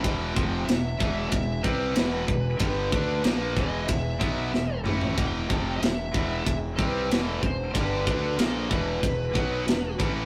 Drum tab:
RD |b---b---b---b---|b---b---b-------|b---b---b---b---|b---b---b---b---|
SD |----o-------o---|----o-------o---|----o-------o---|----o-------o---|
T2 |----------------|--------------o-|----------------|----------------|
FT |----------------|---------------o|----------------|----------------|
BD |o-o---o-o-o---o-|o-o---o-o-o-----|o-o---o-o-o---o-|o-o---o-o-o---o-|